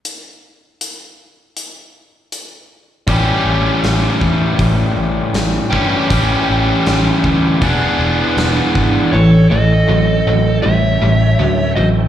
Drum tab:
HH |x-x-x-x-|o-o-o-o-|o-o-o-o-|--------|
SD |--------|--o---o-|--o---o-|--------|
BD |--------|o--oo--o|o--oo--o|--------|